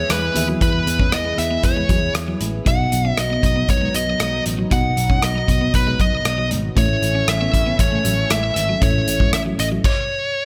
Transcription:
Already playing: E3 B3 E4 G#4 B4 C#5 G#5
0.10 E2 G#3 B4, cross-stick, closed hi-hat
0.34 D#2 E3 B3 E4 G#4 E5, muted clean electric guitar stroke, closed hi-hat
0.48 F#3
0.61 E2 E3 B4, kick, closed hi-hat
0.87 E2, muted clean electric guitar stroke, closed hi-hat
0.99 C#4, kick
1.12 E2 D#5, cross-stick, closed hi-hat
1.25 B3
1.38 E2 E5, muted clean electric guitar stroke, closed hi-hat
1.51 B3
1.63 E2 C#5, muted clean electric guitar stroke, kick, closed hi-hat
1.76 G#3
1.89 E2 F#3, kick, closed hi-hat
2.15 E2, muted clean electric guitar stroke, cross-stick, closed hi-hat
2.28 F#3
2.41 A1 G#3, closed hi-hat
2.65 B1 B2 F#3 B3 D#4 F#4 D#5 F#5, kick, closed hi-hat
2.92 B1, muted clean electric guitar stroke, closed hi-hat
3.05 C#4
3.10 E5
3.17 B1 D#5, cross-stick, closed hi-hat
3.30 B3
3.43 B1, muted clean electric guitar stroke, kick, closed hi-hat
3.56 B3
3.69 B1 C#5, muted clean electric guitar stroke, kick, closed hi-hat
3.81 G#3
3.94 B1 F#3 D#5, closed hi-hat
4.20 B1 G#3, cross-stick, closed hi-hat
4.46 A1, muted clean electric guitar stroke, closed hi-hat
4.59 F#3
4.70 B1 B2 B3 D#4 F#4 D#5 F#5, kick, closed hi-hat
4.97 B1, muted clean electric guitar stroke, closed hi-hat
5.10 C#4, kick
5.22 B1 D#5, cross-stick, closed hi-hat
5.36 B3
5.48 B1, muted clean electric guitar stroke, kick, closed hi-hat
5.61 B3
5.74 B1 B4, muted clean electric guitar stroke, kick, closed hi-hat
5.87 G#3
6.00 B1 F#3 D#5, kick, closed hi-hat
6.25 B1, muted clean electric guitar stroke, cross-stick, closed hi-hat
6.38 F#3
6.51 G#1 G#3, closed hi-hat
6.75 A1 A2 E3 A3 C#4 E4 A4 C#5 E5, kick, closed hi-hat
7.02 A1, muted clean electric guitar stroke, closed hi-hat
7.15 C#4
7.28 A1 E5, cross-stick, closed hi-hat
7.41 B3
7.53 A1, muted clean electric guitar stroke, kick, closed hi-hat
7.66 B3
7.79 A1 C#5, muted clean electric guitar stroke, kick, closed hi-hat
7.92 A3
8.05 A1 F#3, closed hi-hat
8.30 A1 G#3 E5, cross-stick, closed hi-hat
8.56 G#1, muted clean electric guitar stroke, closed hi-hat
8.69 F#3
8.81 A1 A2 A3 C#4 E4 A4 C#5 E5, kick, closed hi-hat
9.07 A1, muted clean electric guitar stroke, closed hi-hat
9.20 G#3, kick
9.33 A1 E5, cross-stick, closed hi-hat
9.46 F#3
9.59 A1 D#5, muted clean electric guitar stroke, closed hi-hat
9.72 F#3
9.84 C#5, kick, crash

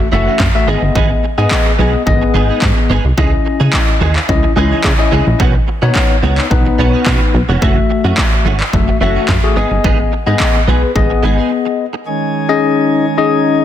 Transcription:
0.00 muted clean electric guitar stroke
0.12 F#1 E3 A3 C#4 F#4 E5
0.27 E3 A3 C#4 F#4
0.40 F#2, muted clean electric guitar stroke, kick, snare, clap
0.55 A3 F#4 E5, muted clean electric guitar stroke
0.68 G#1 G#3 B3 D#4 G#4 D#5
0.82 G1, muted clean electric guitar stroke
0.95 G#1 G#3 B3 D#4 G#4, kick
1.10 muted clean electric guitar stroke
1.23 muted clean electric guitar stroke
1.38 G#2 G#3 B3 D#4 G#4 D#5
1.51 kick, snare, clap
1.66 muted clean electric guitar stroke
1.79 B1 G#3 B3 D#4 G#4 D#5
1.94 muted clean electric guitar stroke
2.06 G#1 B3 G#4 D#5, muted clean electric guitar stroke, kick
2.22 muted clean electric guitar stroke
2.34 G#1 G#3 B3 D#4 G#4
2.49 G#3 B3 D#4 G#4
2.62 G#2, muted clean electric guitar stroke, kick, snare, clap
2.77 muted clean electric guitar stroke
2.90 G#1 G#3 B3 D#4 G#4
3.05 C2, muted clean electric guitar stroke
3.17 C#2 E3 G#3 C#4 D#4 E4 G#4 D#5, kick
3.32 muted clean electric guitar stroke
3.45 muted clean electric guitar stroke
3.60 C#3 E3 G#3 D#4 G#4
3.73 kick, snare, clap
3.88 muted clean electric guitar stroke
4.01 D#2 E3 G#3 D#4 G#4
4.15 muted clean electric guitar stroke, clap
4.28 C#2 C#4 E4 D#5, muted clean electric guitar stroke, kick
4.43 muted clean electric guitar stroke
4.56 C#2 E3 G#3 C#4 D#4 E4 G#4 D#5
4.71 E3 G#3 D#4 G#4
4.84 C#3, muted clean electric guitar stroke, kick, snare, clap
4.99 C#4 E4 D#5, muted clean electric guitar stroke
5.11 C#2 E3 G#3 D#4 G#4
5.26 A#1, muted clean electric guitar stroke
5.39 B1 D#3 B3 C#4 F#4, kick
5.54 muted clean electric guitar stroke
5.67 muted clean electric guitar stroke
5.82 B2 D#3 B3 C#4 D#4 F#4 C#5
5.95 kick, snare, clap
6.10 muted clean electric guitar stroke
6.23 C#2 D#3 B3 C#4 D#4 F#4 C#5
6.38 muted clean electric guitar stroke, clap
6.50 B1 B3 D#4 B4, muted clean electric guitar stroke, kick
6.66 muted clean electric guitar stroke
6.79 B1 D#3 B3 C#4 F#4
6.93 D#3 B3 C#4 F#4
7.06 B2 D#3 B3 C#4 F#4, kick, snare, clap
7.21 muted clean electric guitar stroke
7.34 B1, muted clean electric guitar stroke
7.49 F1 D#3 B3 C#4 F#4
7.62 F#1 E3 A3 C#4 F#4 E5, kick
7.77 muted clean electric guitar stroke
7.90 muted clean electric guitar stroke
8.04 F#2 E3 A3 C#4 F#4
8.18 kick, snare, clap
8.32 muted clean electric guitar stroke
8.45 G#1 E3 A3 C#4 F#4
8.60 muted clean electric guitar stroke, clap
8.73 F#1 A3 F#4 E5, muted clean electric guitar stroke, kick
8.88 muted clean electric guitar stroke
9.01 F#1 E3 A3 C#4 F#4 E5
9.15 E3 A3 C#4 F#4
9.29 F#2, muted clean electric guitar stroke, kick, snare, clap
9.43 A3 F#4 G#4, muted clean electric guitar stroke
9.56 G#1 G#3 B3 D#4 G#4 D#5
9.71 G1, muted clean electric guitar stroke
9.84 G#1 G#3 B3 D#4 G#4, kick
9.99 muted clean electric guitar stroke
10.12 muted clean electric guitar stroke
10.26 G#2 G#3 B3 D#4 G#4 D#5
10.40 kick, snare, clap
10.55 muted clean electric guitar stroke
10.67 B1 G#3 B3 D#4 G#4 B4
10.82 muted clean electric guitar stroke
10.95 G#1 B3 G#4 D#5, muted clean electric guitar stroke, kick
11.10 muted clean electric guitar stroke
11.23 G#1 G#3 B3 D#4 G#4
11.38 G#3 B3 D#4 G#4
11.51 muted clean electric guitar stroke
11.65 muted clean electric guitar stroke
11.93 muted clean electric guitar stroke
12.07 D#3 G#3 C#4 G#4
12.49 C#4 D#4 G#4 D#5
13.18 C#4 D#4 G#4 D#5

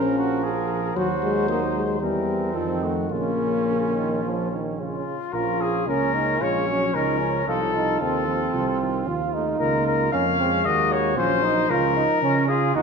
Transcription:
Already playing: A#1 F3 C#4 A#4
0.18 F#4
0.44 G#4
0.95 D#2 F#3 F#4 C5
1.22 G#3
1.48 A#3 D#4
1.74 G#3
2.00 E2 E3 G3 C4 A#4
2.54 F2 D#3 F3 A4
2.82 A3 F#4
3.10 A#1 C#3 A#3 C#4 F4
3.67 C#3
3.95 D#3
4.24 F3
4.51 D#3
4.78 C#3 F4
5.33 A#1 F3 C#4 F4 A#4
5.61 G#4
5.87 C#2 A#3 C#4 A#4
6.14 D#4
6.40 A#1 G#3 F4 C#5
6.68 F#3 C#4
6.94 C#2 F3 D#4 A#4
7.21 C#4
7.47 C2 F3 D#4 F4 A4
7.74 D#4 F4
8.00 D#2 D#3 C4 A4
8.27 F3 C4
8.53 C2 F3
8.80 D#3
9.07 D#2 F3 F4
9.34 A3 D#4
9.60 C#2 A#3 F4 A#4
9.86 A#4
10.12 F2 A#3 C#4 F5
10.39 G#3 C4
10.65 D#2 A#3 F#4 D#5
10.92 C#5
11.17 A#1 F#3 C#4 F4 C5
11.43 D#4
11.70 C#2 F3 C#4 F4 A#4
11.97 D#4
12.22 C#3 C#4
12.48 F4 G#4
12.75 D#2 D#3 D#4 F#4

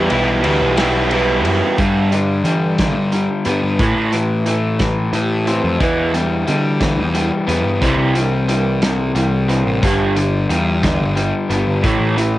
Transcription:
Already playing: B3 E4
0.09 B1 E2 B2 E3 G3 B3 E4 G4, ride
0.42 D2 E2 B2 E3 G3 B3 E4 G4, ride
0.61 B1
0.76 E2 B2 E3 G3 B3 E4 G4, snare, ride
1.10 E2 B2 E3 G3 B3 E4 G4, ride
1.45 F#2, ride
1.78 G2 D3 G3, kick, closed hi-hat
2.12 G2 D3, closed hi-hat
2.44 G2 D3 E3 G3, closed hi-hat
2.78 G2 D3, kick, snare, closed hi-hat
2.96 G2
3.12 G2 D3 G3, closed hi-hat
3.45 G2 D3 B3, closed hi-hat
3.63 G2
3.79 A2 E3 A3, kick, closed hi-hat
3.96 A2
4.12 A2 E3, closed hi-hat
4.46 A2 E3 A3, closed hi-hat
4.79 A2 E3, kick, snare, closed hi-hat
5.13 A2 E3 A3, closed hi-hat
5.46 A2 E3 C4, closed hi-hat
5.64 F2
5.79 E2 B2 E3, kick, closed hi-hat
6.13 E2 B2 G3, closed hi-hat
6.47 E2 B2 D3 G3, closed hi-hat
6.80 E2 B2 E3, kick, snare, closed hi-hat
6.98 E2
7.14 E2 B2 G3, closed hi-hat
7.47 E2 B2 B3, closed hi-hat
7.64 G2
7.81 C2 C3 E3 G3, kick, closed hi-hat
7.97 C2
8.15 C3 E3 G3, closed hi-hat
8.48 C3 E3 G3, closed hi-hat
8.82 C3 E3, snare, closed hi-hat
9.15 C2 C3 E3 G3, closed hi-hat
9.48 C3 E3 C4, closed hi-hat
9.65 A1
9.82 G1 G2 D3 G3, kick, closed hi-hat
10.16 G2 D3, closed hi-hat
10.49 E2 G2 D3 G3, closed hi-hat
10.83 G2 D3, kick, snare, closed hi-hat
11.00 G1
11.15 G2 D3 G3, closed hi-hat
11.49 G1 G2 D3 B3, closed hi-hat
11.67 G1
11.83 A1 A2 E3 A3, kick, closed hi-hat
11.99 A1
12.17 A2 E3, closed hi-hat

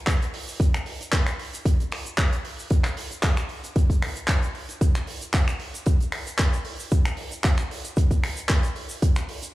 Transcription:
0.07 kick, clap, closed hi-hat, shaker
0.22 closed hi-hat, shaker
0.34 open hi-hat
0.48 shaker
0.60 kick, closed hi-hat, shaker
0.74 finger snap, closed hi-hat, shaker
0.86 open hi-hat
1.01 closed hi-hat, shaker
1.13 kick, clap, closed hi-hat, shaker
1.27 finger snap, closed hi-hat, shaker
1.39 open hi-hat
1.53 closed hi-hat, shaker
1.65 kick, closed hi-hat, shaker
1.80 closed hi-hat, shaker
1.92 finger snap, open hi-hat
2.05 closed hi-hat, shaker
2.18 kick, clap, closed hi-hat, shaker
2.33 closed hi-hat, shaker
2.45 open hi-hat
2.59 shaker
2.70 kick, closed hi-hat, shaker
2.84 finger snap, clap, closed hi-hat, shaker
2.97 open hi-hat
3.11 closed hi-hat, shaker
3.23 kick, clap, closed hi-hat, shaker
3.37 finger snap, closed hi-hat, shaker
3.49 open hi-hat
3.64 closed hi-hat, shaker
3.76 kick, closed hi-hat, shaker
3.90 kick, closed hi-hat, shaker
4.02 finger snap, open hi-hat
4.16 closed hi-hat, shaker
4.28 kick, clap, closed hi-hat, shaker
4.43 closed hi-hat, shaker
4.55 open hi-hat
4.69 closed hi-hat, shaker
4.81 kick, closed hi-hat, cabasa, shaker
4.95 finger snap, closed hi-hat, cabasa, shaker
5.07 open hi-hat
5.21 closed hi-hat, cabasa, shaker
5.34 kick, clap, closed hi-hat, cabasa, shaker
5.48 finger snap, closed hi-hat, cabasa, shaker
5.60 open hi-hat
5.74 closed hi-hat, cabasa, shaker
5.86 kick, closed hi-hat, cabasa, shaker
6.00 closed hi-hat, cabasa, shaker
6.12 finger snap, open hi-hat
6.27 closed hi-hat, cabasa, shaker
6.39 kick, clap, closed hi-hat, cabasa, shaker
6.53 closed hi-hat, cabasa, shaker
6.65 open hi-hat
6.80 cabasa, shaker
6.91 kick, closed hi-hat, cabasa, shaker
7.05 finger snap, closed hi-hat, cabasa, shaker
7.17 open hi-hat
7.31 closed hi-hat, cabasa, shaker
7.44 kick, clap, closed hi-hat, cabasa, shaker
7.57 finger snap, closed hi-hat, cabasa, shaker
7.71 open hi-hat
7.84 closed hi-hat, cabasa, shaker
7.96 kick, closed hi-hat, cabasa, shaker
8.11 kick, closed hi-hat, cabasa, shaker
8.24 finger snap, open hi-hat
8.36 closed hi-hat, cabasa, shaker
8.48 kick, clap, closed hi-hat, cabasa, shaker
8.63 closed hi-hat, cabasa, shaker
8.76 open hi-hat
8.89 cabasa, shaker
9.02 kick, closed hi-hat, cabasa, shaker
9.16 finger snap, closed hi-hat, cabasa, shaker
9.29 open hi-hat
9.43 closed hi-hat, cabasa, shaker

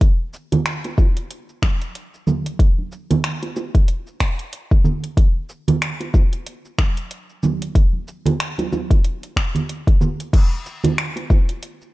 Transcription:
0.01 kick, closed hi-hat, shaker
0.34 shaker
0.52 closed hi-hat, high bongo, low conga, shaker
0.66 finger snap, closed hi-hat, shaker
0.84 closed hi-hat, high bongo
0.98 kick, high bongo, shaker
1.17 closed hi-hat, shaker
1.31 closed hi-hat, shaker
1.49 shaker
1.62 finger snap, kick, high conga, shaker
1.82 closed hi-hat, shaker
1.95 closed hi-hat, shaker
2.14 shaker
2.27 high conga, low conga, shaker
2.46 closed hi-hat, shaker
2.59 kick, closed hi-hat, shaker
2.78 high conga
2.92 shaker
3.10 closed hi-hat, high bongo, low conga, shaker
3.24 finger snap, closed hi-hat, shaker
3.43 closed hi-hat, high bongo
3.56 high bongo, shaker
3.75 kick, closed hi-hat, shaker
3.88 closed hi-hat, shaker
4.07 shaker
4.20 finger snap, kick, shaker
4.39 closed hi-hat, shaker
4.53 closed hi-hat, shaker
4.71 kick, shaker
4.84 low conga, shaker
5.04 closed hi-hat, shaker
5.17 kick, closed hi-hat, shaker
5.49 shaker
5.68 closed hi-hat, high bongo, low conga, shaker
5.82 finger snap, closed hi-hat, shaker
6.00 closed hi-hat, high bongo
6.14 kick, high bongo, shaker
6.33 closed hi-hat, shaker
6.46 closed hi-hat, shaker
6.65 shaker
6.78 finger snap, kick, high conga, shaker
6.97 closed hi-hat, shaker
7.11 closed hi-hat, shaker
7.30 shaker
7.43 high conga, low conga, shaker
7.62 closed hi-hat, shaker
7.75 kick, closed hi-hat, shaker
7.93 high conga
8.08 shaker
8.26 closed hi-hat, high bongo, low conga, shaker
8.40 finger snap, closed hi-hat, shaker
8.58 closed hi-hat, high bongo, high conga, shaker
8.72 high bongo, high conga, shaker
8.91 kick, closed hi-hat, high bongo, shaker
9.04 closed hi-hat, shaker
9.23 closed hi-hat, shaker
9.36 finger snap, kick, shaker
9.55 closed hi-hat, low conga, shaker
9.69 closed hi-hat, shaker
9.87 kick, closed hi-hat, shaker
10.01 low conga, shaker
10.20 closed hi-hat, shaker
10.33 kick, closed hi-hat, crash, shaker
10.66 shaker
10.84 closed hi-hat, high bongo, low conga, shaker
10.98 finger snap, closed hi-hat, shaker
11.16 closed hi-hat, high bongo
11.30 kick, high bongo, shaker
11.49 closed hi-hat, shaker
11.63 closed hi-hat, shaker
11.82 shaker

